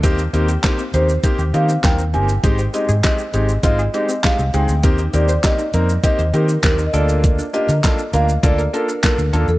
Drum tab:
HH |x-x-x-x-x-x-x-x-|x-x-x-x-x-x-x-x-|x-x-x-x-x-x-x-x-|x-x-x-x-x-x-x-x-|
SH |xxxxxxxxxxxxxxxx|xxxxxxxxxxxxxxxx|xxxxxxxxxxxxxxxx|xxxxxxxxxxxxxxxx|
CP |----x-------x---|----x-------x---|----x-------x---|----x-------x---|
SD |----o-------o---|----o-------o---|----o-------o---|----o-------o---|
BD |o---o---o---o---|o---o---o---o---|o---o---o---o---|o---o---o---o---|